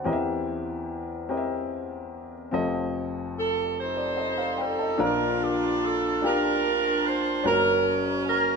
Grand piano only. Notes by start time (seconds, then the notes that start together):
Already playing: C5 F#5
0.04 E2 E3 C4 G4 A#4 D#5
0.13 E5
1.29 C4 G4 A#4 D#5
1.37 E5
2.51 F1 F2 C4 F4 A4 D#5
3.97 A4 D5
4.17 A4 D#5
4.38 C5 F5
4.58 D5 G5
4.79 D#5 A5
4.98 A#1 A#2 D4 F4 A#4
6.22 D4 F4 G4
7.43 F#1 F#2 C#4 F#4 A#4